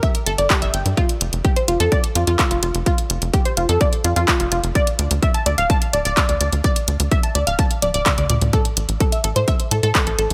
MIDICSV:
0, 0, Header, 1, 4, 480
1, 0, Start_track
1, 0, Tempo, 472441
1, 989, Time_signature, 4, 2, 24, 8
1, 10502, End_track
2, 0, Start_track
2, 0, Title_t, "Synth pluck"
2, 0, Program_c, 0, 84
2, 29, Note_on_c, 0, 76, 104
2, 109, Note_off_c, 0, 76, 0
2, 269, Note_on_c, 0, 69, 106
2, 349, Note_off_c, 0, 69, 0
2, 390, Note_on_c, 0, 74, 81
2, 503, Note_off_c, 0, 74, 0
2, 509, Note_on_c, 0, 67, 85
2, 589, Note_off_c, 0, 67, 0
2, 629, Note_on_c, 0, 76, 99
2, 708, Note_off_c, 0, 76, 0
2, 749, Note_on_c, 0, 79, 75
2, 797, Note_off_c, 0, 79, 0
2, 989, Note_on_c, 0, 65, 106
2, 1069, Note_off_c, 0, 65, 0
2, 1469, Note_on_c, 0, 67, 85
2, 1584, Note_off_c, 0, 67, 0
2, 1590, Note_on_c, 0, 72, 80
2, 1637, Note_off_c, 0, 72, 0
2, 1709, Note_on_c, 0, 65, 74
2, 1789, Note_off_c, 0, 65, 0
2, 1830, Note_on_c, 0, 69, 99
2, 1943, Note_off_c, 0, 69, 0
2, 1949, Note_on_c, 0, 74, 105
2, 2029, Note_off_c, 0, 74, 0
2, 2189, Note_on_c, 0, 65, 79
2, 2237, Note_off_c, 0, 65, 0
2, 2310, Note_on_c, 0, 65, 100
2, 2388, Note_off_c, 0, 65, 0
2, 2429, Note_on_c, 0, 65, 84
2, 2538, Note_off_c, 0, 65, 0
2, 2550, Note_on_c, 0, 65, 75
2, 2629, Note_off_c, 0, 65, 0
2, 2669, Note_on_c, 0, 65, 78
2, 2749, Note_off_c, 0, 65, 0
2, 2909, Note_on_c, 0, 65, 109
2, 2989, Note_off_c, 0, 65, 0
2, 3390, Note_on_c, 0, 67, 86
2, 3504, Note_off_c, 0, 67, 0
2, 3510, Note_on_c, 0, 72, 79
2, 3557, Note_off_c, 0, 72, 0
2, 3629, Note_on_c, 0, 65, 76
2, 3709, Note_off_c, 0, 65, 0
2, 3750, Note_on_c, 0, 69, 98
2, 3863, Note_off_c, 0, 69, 0
2, 3869, Note_on_c, 0, 74, 103
2, 3949, Note_off_c, 0, 74, 0
2, 4109, Note_on_c, 0, 65, 79
2, 4157, Note_off_c, 0, 65, 0
2, 4230, Note_on_c, 0, 65, 106
2, 4308, Note_off_c, 0, 65, 0
2, 4349, Note_on_c, 0, 65, 86
2, 4457, Note_off_c, 0, 65, 0
2, 4470, Note_on_c, 0, 65, 74
2, 4549, Note_off_c, 0, 65, 0
2, 4589, Note_on_c, 0, 65, 79
2, 4669, Note_off_c, 0, 65, 0
2, 4829, Note_on_c, 0, 74, 110
2, 4909, Note_off_c, 0, 74, 0
2, 5309, Note_on_c, 0, 76, 84
2, 5424, Note_off_c, 0, 76, 0
2, 5430, Note_on_c, 0, 81, 79
2, 5477, Note_off_c, 0, 81, 0
2, 5549, Note_on_c, 0, 74, 74
2, 5629, Note_off_c, 0, 74, 0
2, 5670, Note_on_c, 0, 77, 101
2, 5783, Note_off_c, 0, 77, 0
2, 5789, Note_on_c, 0, 81, 105
2, 5869, Note_off_c, 0, 81, 0
2, 6029, Note_on_c, 0, 74, 83
2, 6077, Note_off_c, 0, 74, 0
2, 6150, Note_on_c, 0, 74, 108
2, 6229, Note_off_c, 0, 74, 0
2, 6269, Note_on_c, 0, 74, 86
2, 6378, Note_off_c, 0, 74, 0
2, 6390, Note_on_c, 0, 74, 73
2, 6469, Note_off_c, 0, 74, 0
2, 6509, Note_on_c, 0, 74, 77
2, 6589, Note_off_c, 0, 74, 0
2, 6749, Note_on_c, 0, 74, 111
2, 6829, Note_off_c, 0, 74, 0
2, 7229, Note_on_c, 0, 76, 87
2, 7344, Note_off_c, 0, 76, 0
2, 7350, Note_on_c, 0, 81, 76
2, 7397, Note_off_c, 0, 81, 0
2, 7469, Note_on_c, 0, 74, 74
2, 7549, Note_off_c, 0, 74, 0
2, 7590, Note_on_c, 0, 77, 99
2, 7703, Note_off_c, 0, 77, 0
2, 7709, Note_on_c, 0, 81, 100
2, 7789, Note_off_c, 0, 81, 0
2, 7949, Note_on_c, 0, 74, 82
2, 7997, Note_off_c, 0, 74, 0
2, 8070, Note_on_c, 0, 74, 105
2, 8149, Note_off_c, 0, 74, 0
2, 8189, Note_on_c, 0, 74, 80
2, 8297, Note_off_c, 0, 74, 0
2, 8310, Note_on_c, 0, 74, 77
2, 8389, Note_off_c, 0, 74, 0
2, 8429, Note_on_c, 0, 74, 78
2, 8509, Note_off_c, 0, 74, 0
2, 8669, Note_on_c, 0, 69, 110
2, 8749, Note_off_c, 0, 69, 0
2, 9149, Note_on_c, 0, 69, 83
2, 9264, Note_off_c, 0, 69, 0
2, 9270, Note_on_c, 0, 76, 80
2, 9317, Note_off_c, 0, 76, 0
2, 9389, Note_on_c, 0, 69, 75
2, 9469, Note_off_c, 0, 69, 0
2, 9510, Note_on_c, 0, 72, 101
2, 9623, Note_off_c, 0, 72, 0
2, 9629, Note_on_c, 0, 76, 103
2, 9709, Note_off_c, 0, 76, 0
2, 9869, Note_on_c, 0, 69, 81
2, 9917, Note_off_c, 0, 69, 0
2, 9990, Note_on_c, 0, 69, 105
2, 10068, Note_off_c, 0, 69, 0
2, 10109, Note_on_c, 0, 69, 85
2, 10217, Note_off_c, 0, 69, 0
2, 10229, Note_on_c, 0, 69, 76
2, 10308, Note_off_c, 0, 69, 0
2, 10349, Note_on_c, 0, 69, 78
2, 10429, Note_off_c, 0, 69, 0
2, 10502, End_track
3, 0, Start_track
3, 0, Title_t, "Analog synth bass"
3, 0, Program_c, 1, 38
3, 269, Note_on_c, 1, 31, 92
3, 366, Note_off_c, 1, 31, 0
3, 390, Note_on_c, 1, 31, 83
3, 486, Note_off_c, 1, 31, 0
3, 630, Note_on_c, 1, 31, 77
3, 726, Note_off_c, 1, 31, 0
3, 749, Note_on_c, 1, 31, 92
3, 846, Note_off_c, 1, 31, 0
3, 870, Note_on_c, 1, 43, 81
3, 966, Note_off_c, 1, 43, 0
3, 1229, Note_on_c, 1, 29, 97
3, 1326, Note_off_c, 1, 29, 0
3, 1350, Note_on_c, 1, 29, 85
3, 1446, Note_off_c, 1, 29, 0
3, 1709, Note_on_c, 1, 29, 92
3, 1806, Note_off_c, 1, 29, 0
3, 1830, Note_on_c, 1, 41, 81
3, 1926, Note_off_c, 1, 41, 0
3, 2189, Note_on_c, 1, 41, 96
3, 2286, Note_off_c, 1, 41, 0
3, 2310, Note_on_c, 1, 41, 84
3, 2406, Note_off_c, 1, 41, 0
3, 2550, Note_on_c, 1, 29, 78
3, 2646, Note_off_c, 1, 29, 0
3, 2669, Note_on_c, 1, 29, 93
3, 2766, Note_off_c, 1, 29, 0
3, 2790, Note_on_c, 1, 29, 80
3, 2886, Note_off_c, 1, 29, 0
3, 3149, Note_on_c, 1, 29, 88
3, 3246, Note_off_c, 1, 29, 0
3, 3270, Note_on_c, 1, 29, 86
3, 3366, Note_off_c, 1, 29, 0
3, 3629, Note_on_c, 1, 29, 89
3, 3726, Note_off_c, 1, 29, 0
3, 3750, Note_on_c, 1, 41, 79
3, 3846, Note_off_c, 1, 41, 0
3, 4109, Note_on_c, 1, 41, 95
3, 4206, Note_off_c, 1, 41, 0
3, 4230, Note_on_c, 1, 41, 85
3, 4326, Note_off_c, 1, 41, 0
3, 4470, Note_on_c, 1, 29, 81
3, 4566, Note_off_c, 1, 29, 0
3, 4589, Note_on_c, 1, 29, 96
3, 4686, Note_off_c, 1, 29, 0
3, 4710, Note_on_c, 1, 29, 82
3, 4806, Note_off_c, 1, 29, 0
3, 5069, Note_on_c, 1, 38, 88
3, 5166, Note_off_c, 1, 38, 0
3, 5190, Note_on_c, 1, 38, 83
3, 5286, Note_off_c, 1, 38, 0
3, 5549, Note_on_c, 1, 38, 98
3, 5646, Note_off_c, 1, 38, 0
3, 5669, Note_on_c, 1, 26, 83
3, 5765, Note_off_c, 1, 26, 0
3, 6028, Note_on_c, 1, 26, 101
3, 6126, Note_off_c, 1, 26, 0
3, 6150, Note_on_c, 1, 26, 84
3, 6246, Note_off_c, 1, 26, 0
3, 6390, Note_on_c, 1, 38, 76
3, 6486, Note_off_c, 1, 38, 0
3, 6509, Note_on_c, 1, 38, 93
3, 6606, Note_off_c, 1, 38, 0
3, 6630, Note_on_c, 1, 38, 80
3, 6726, Note_off_c, 1, 38, 0
3, 6989, Note_on_c, 1, 38, 93
3, 7086, Note_off_c, 1, 38, 0
3, 7110, Note_on_c, 1, 38, 85
3, 7206, Note_off_c, 1, 38, 0
3, 7469, Note_on_c, 1, 38, 95
3, 7566, Note_off_c, 1, 38, 0
3, 7590, Note_on_c, 1, 26, 81
3, 7686, Note_off_c, 1, 26, 0
3, 7949, Note_on_c, 1, 26, 93
3, 8046, Note_off_c, 1, 26, 0
3, 8070, Note_on_c, 1, 26, 83
3, 8166, Note_off_c, 1, 26, 0
3, 8311, Note_on_c, 1, 38, 79
3, 8406, Note_off_c, 1, 38, 0
3, 8430, Note_on_c, 1, 38, 94
3, 8527, Note_off_c, 1, 38, 0
3, 8551, Note_on_c, 1, 38, 85
3, 8646, Note_off_c, 1, 38, 0
3, 8910, Note_on_c, 1, 33, 91
3, 9007, Note_off_c, 1, 33, 0
3, 9031, Note_on_c, 1, 33, 82
3, 9126, Note_off_c, 1, 33, 0
3, 9389, Note_on_c, 1, 33, 94
3, 9486, Note_off_c, 1, 33, 0
3, 9510, Note_on_c, 1, 45, 83
3, 9606, Note_off_c, 1, 45, 0
3, 9869, Note_on_c, 1, 45, 96
3, 9966, Note_off_c, 1, 45, 0
3, 9990, Note_on_c, 1, 45, 83
3, 10086, Note_off_c, 1, 45, 0
3, 10230, Note_on_c, 1, 33, 76
3, 10326, Note_off_c, 1, 33, 0
3, 10349, Note_on_c, 1, 33, 94
3, 10446, Note_off_c, 1, 33, 0
3, 10469, Note_on_c, 1, 33, 78
3, 10502, Note_off_c, 1, 33, 0
3, 10502, End_track
4, 0, Start_track
4, 0, Title_t, "Drums"
4, 29, Note_on_c, 9, 36, 118
4, 29, Note_on_c, 9, 42, 54
4, 130, Note_off_c, 9, 42, 0
4, 131, Note_off_c, 9, 36, 0
4, 150, Note_on_c, 9, 42, 57
4, 251, Note_off_c, 9, 42, 0
4, 269, Note_on_c, 9, 42, 112
4, 370, Note_off_c, 9, 42, 0
4, 390, Note_on_c, 9, 42, 51
4, 491, Note_off_c, 9, 42, 0
4, 509, Note_on_c, 9, 36, 118
4, 509, Note_on_c, 9, 39, 126
4, 509, Note_on_c, 9, 42, 57
4, 611, Note_off_c, 9, 36, 0
4, 611, Note_off_c, 9, 39, 0
4, 611, Note_off_c, 9, 42, 0
4, 630, Note_on_c, 9, 42, 51
4, 732, Note_off_c, 9, 42, 0
4, 749, Note_on_c, 9, 42, 106
4, 851, Note_off_c, 9, 42, 0
4, 870, Note_on_c, 9, 42, 52
4, 972, Note_off_c, 9, 42, 0
4, 989, Note_on_c, 9, 36, 114
4, 989, Note_on_c, 9, 42, 52
4, 1091, Note_off_c, 9, 36, 0
4, 1091, Note_off_c, 9, 42, 0
4, 1110, Note_on_c, 9, 42, 57
4, 1212, Note_off_c, 9, 42, 0
4, 1229, Note_on_c, 9, 42, 116
4, 1331, Note_off_c, 9, 42, 0
4, 1349, Note_on_c, 9, 42, 54
4, 1451, Note_off_c, 9, 42, 0
4, 1469, Note_on_c, 9, 36, 123
4, 1469, Note_on_c, 9, 42, 54
4, 1570, Note_off_c, 9, 42, 0
4, 1571, Note_off_c, 9, 36, 0
4, 1590, Note_on_c, 9, 42, 54
4, 1691, Note_off_c, 9, 42, 0
4, 1709, Note_on_c, 9, 42, 108
4, 1810, Note_off_c, 9, 42, 0
4, 1830, Note_on_c, 9, 42, 56
4, 1932, Note_off_c, 9, 42, 0
4, 1949, Note_on_c, 9, 36, 112
4, 1949, Note_on_c, 9, 42, 53
4, 2050, Note_off_c, 9, 42, 0
4, 2051, Note_off_c, 9, 36, 0
4, 2070, Note_on_c, 9, 42, 58
4, 2171, Note_off_c, 9, 42, 0
4, 2189, Note_on_c, 9, 42, 108
4, 2290, Note_off_c, 9, 42, 0
4, 2309, Note_on_c, 9, 42, 53
4, 2411, Note_off_c, 9, 42, 0
4, 2428, Note_on_c, 9, 39, 120
4, 2428, Note_on_c, 9, 42, 57
4, 2429, Note_on_c, 9, 36, 116
4, 2530, Note_off_c, 9, 39, 0
4, 2530, Note_off_c, 9, 42, 0
4, 2531, Note_off_c, 9, 36, 0
4, 2549, Note_on_c, 9, 42, 54
4, 2651, Note_off_c, 9, 42, 0
4, 2669, Note_on_c, 9, 42, 106
4, 2770, Note_off_c, 9, 42, 0
4, 2790, Note_on_c, 9, 42, 51
4, 2891, Note_off_c, 9, 42, 0
4, 2909, Note_on_c, 9, 36, 112
4, 2909, Note_on_c, 9, 42, 57
4, 3010, Note_off_c, 9, 42, 0
4, 3011, Note_off_c, 9, 36, 0
4, 3029, Note_on_c, 9, 42, 60
4, 3131, Note_off_c, 9, 42, 0
4, 3149, Note_on_c, 9, 42, 112
4, 3250, Note_off_c, 9, 42, 0
4, 3269, Note_on_c, 9, 42, 56
4, 3371, Note_off_c, 9, 42, 0
4, 3389, Note_on_c, 9, 36, 122
4, 3389, Note_on_c, 9, 42, 58
4, 3490, Note_off_c, 9, 42, 0
4, 3491, Note_off_c, 9, 36, 0
4, 3509, Note_on_c, 9, 42, 54
4, 3611, Note_off_c, 9, 42, 0
4, 3628, Note_on_c, 9, 42, 99
4, 3730, Note_off_c, 9, 42, 0
4, 3749, Note_on_c, 9, 42, 56
4, 3851, Note_off_c, 9, 42, 0
4, 3868, Note_on_c, 9, 42, 58
4, 3869, Note_on_c, 9, 36, 110
4, 3970, Note_off_c, 9, 42, 0
4, 3971, Note_off_c, 9, 36, 0
4, 3989, Note_on_c, 9, 42, 58
4, 4091, Note_off_c, 9, 42, 0
4, 4109, Note_on_c, 9, 42, 109
4, 4211, Note_off_c, 9, 42, 0
4, 4230, Note_on_c, 9, 42, 55
4, 4331, Note_off_c, 9, 42, 0
4, 4349, Note_on_c, 9, 36, 111
4, 4349, Note_on_c, 9, 39, 121
4, 4349, Note_on_c, 9, 42, 57
4, 4451, Note_off_c, 9, 36, 0
4, 4451, Note_off_c, 9, 39, 0
4, 4451, Note_off_c, 9, 42, 0
4, 4470, Note_on_c, 9, 42, 57
4, 4571, Note_off_c, 9, 42, 0
4, 4589, Note_on_c, 9, 42, 97
4, 4691, Note_off_c, 9, 42, 0
4, 4710, Note_on_c, 9, 42, 53
4, 4811, Note_off_c, 9, 42, 0
4, 4829, Note_on_c, 9, 36, 106
4, 4829, Note_on_c, 9, 42, 60
4, 4930, Note_off_c, 9, 42, 0
4, 4931, Note_off_c, 9, 36, 0
4, 4949, Note_on_c, 9, 42, 60
4, 5051, Note_off_c, 9, 42, 0
4, 5069, Note_on_c, 9, 42, 107
4, 5170, Note_off_c, 9, 42, 0
4, 5189, Note_on_c, 9, 42, 61
4, 5291, Note_off_c, 9, 42, 0
4, 5309, Note_on_c, 9, 36, 118
4, 5309, Note_on_c, 9, 42, 58
4, 5411, Note_off_c, 9, 36, 0
4, 5411, Note_off_c, 9, 42, 0
4, 5429, Note_on_c, 9, 42, 59
4, 5531, Note_off_c, 9, 42, 0
4, 5549, Note_on_c, 9, 42, 100
4, 5650, Note_off_c, 9, 42, 0
4, 5669, Note_on_c, 9, 42, 58
4, 5771, Note_off_c, 9, 42, 0
4, 5789, Note_on_c, 9, 36, 111
4, 5789, Note_on_c, 9, 42, 58
4, 5891, Note_off_c, 9, 36, 0
4, 5891, Note_off_c, 9, 42, 0
4, 5910, Note_on_c, 9, 42, 58
4, 6011, Note_off_c, 9, 42, 0
4, 6029, Note_on_c, 9, 42, 101
4, 6131, Note_off_c, 9, 42, 0
4, 6150, Note_on_c, 9, 42, 56
4, 6251, Note_off_c, 9, 42, 0
4, 6269, Note_on_c, 9, 36, 114
4, 6269, Note_on_c, 9, 39, 126
4, 6269, Note_on_c, 9, 42, 59
4, 6371, Note_off_c, 9, 36, 0
4, 6371, Note_off_c, 9, 39, 0
4, 6371, Note_off_c, 9, 42, 0
4, 6390, Note_on_c, 9, 42, 58
4, 6491, Note_off_c, 9, 42, 0
4, 6508, Note_on_c, 9, 42, 101
4, 6610, Note_off_c, 9, 42, 0
4, 6630, Note_on_c, 9, 42, 56
4, 6731, Note_off_c, 9, 42, 0
4, 6749, Note_on_c, 9, 36, 108
4, 6749, Note_on_c, 9, 42, 59
4, 6850, Note_off_c, 9, 42, 0
4, 6851, Note_off_c, 9, 36, 0
4, 6869, Note_on_c, 9, 42, 64
4, 6971, Note_off_c, 9, 42, 0
4, 6988, Note_on_c, 9, 42, 109
4, 7090, Note_off_c, 9, 42, 0
4, 7110, Note_on_c, 9, 42, 57
4, 7211, Note_off_c, 9, 42, 0
4, 7229, Note_on_c, 9, 36, 118
4, 7229, Note_on_c, 9, 42, 60
4, 7330, Note_off_c, 9, 42, 0
4, 7331, Note_off_c, 9, 36, 0
4, 7350, Note_on_c, 9, 42, 60
4, 7451, Note_off_c, 9, 42, 0
4, 7469, Note_on_c, 9, 42, 107
4, 7570, Note_off_c, 9, 42, 0
4, 7590, Note_on_c, 9, 42, 61
4, 7691, Note_off_c, 9, 42, 0
4, 7709, Note_on_c, 9, 36, 112
4, 7709, Note_on_c, 9, 42, 61
4, 7810, Note_off_c, 9, 42, 0
4, 7811, Note_off_c, 9, 36, 0
4, 7830, Note_on_c, 9, 42, 59
4, 7931, Note_off_c, 9, 42, 0
4, 7948, Note_on_c, 9, 42, 105
4, 7948, Note_on_c, 9, 48, 63
4, 8050, Note_off_c, 9, 42, 0
4, 8050, Note_off_c, 9, 48, 0
4, 8069, Note_on_c, 9, 42, 57
4, 8171, Note_off_c, 9, 42, 0
4, 8188, Note_on_c, 9, 39, 127
4, 8188, Note_on_c, 9, 42, 62
4, 8188, Note_on_c, 9, 47, 82
4, 8189, Note_on_c, 9, 36, 111
4, 8290, Note_off_c, 9, 39, 0
4, 8290, Note_off_c, 9, 42, 0
4, 8290, Note_off_c, 9, 47, 0
4, 8291, Note_off_c, 9, 36, 0
4, 8309, Note_on_c, 9, 42, 56
4, 8309, Note_on_c, 9, 47, 71
4, 8411, Note_off_c, 9, 42, 0
4, 8411, Note_off_c, 9, 47, 0
4, 8428, Note_on_c, 9, 42, 100
4, 8428, Note_on_c, 9, 45, 94
4, 8530, Note_off_c, 9, 42, 0
4, 8530, Note_off_c, 9, 45, 0
4, 8550, Note_on_c, 9, 42, 56
4, 8550, Note_on_c, 9, 45, 80
4, 8651, Note_off_c, 9, 42, 0
4, 8651, Note_off_c, 9, 45, 0
4, 8669, Note_on_c, 9, 36, 116
4, 8669, Note_on_c, 9, 42, 59
4, 8770, Note_off_c, 9, 42, 0
4, 8771, Note_off_c, 9, 36, 0
4, 8789, Note_on_c, 9, 42, 64
4, 8891, Note_off_c, 9, 42, 0
4, 8909, Note_on_c, 9, 42, 111
4, 9010, Note_off_c, 9, 42, 0
4, 9029, Note_on_c, 9, 42, 59
4, 9131, Note_off_c, 9, 42, 0
4, 9148, Note_on_c, 9, 42, 63
4, 9149, Note_on_c, 9, 36, 127
4, 9250, Note_off_c, 9, 42, 0
4, 9251, Note_off_c, 9, 36, 0
4, 9269, Note_on_c, 9, 42, 59
4, 9371, Note_off_c, 9, 42, 0
4, 9388, Note_on_c, 9, 42, 107
4, 9490, Note_off_c, 9, 42, 0
4, 9509, Note_on_c, 9, 42, 61
4, 9611, Note_off_c, 9, 42, 0
4, 9629, Note_on_c, 9, 36, 111
4, 9629, Note_on_c, 9, 42, 59
4, 9730, Note_off_c, 9, 42, 0
4, 9731, Note_off_c, 9, 36, 0
4, 9750, Note_on_c, 9, 42, 61
4, 9851, Note_off_c, 9, 42, 0
4, 9869, Note_on_c, 9, 42, 105
4, 9970, Note_off_c, 9, 42, 0
4, 9990, Note_on_c, 9, 42, 59
4, 10091, Note_off_c, 9, 42, 0
4, 10109, Note_on_c, 9, 36, 118
4, 10109, Note_on_c, 9, 39, 127
4, 10109, Note_on_c, 9, 42, 62
4, 10210, Note_off_c, 9, 39, 0
4, 10210, Note_off_c, 9, 42, 0
4, 10211, Note_off_c, 9, 36, 0
4, 10229, Note_on_c, 9, 42, 60
4, 10331, Note_off_c, 9, 42, 0
4, 10349, Note_on_c, 9, 42, 107
4, 10450, Note_off_c, 9, 42, 0
4, 10469, Note_on_c, 9, 42, 56
4, 10502, Note_off_c, 9, 42, 0
4, 10502, End_track
0, 0, End_of_file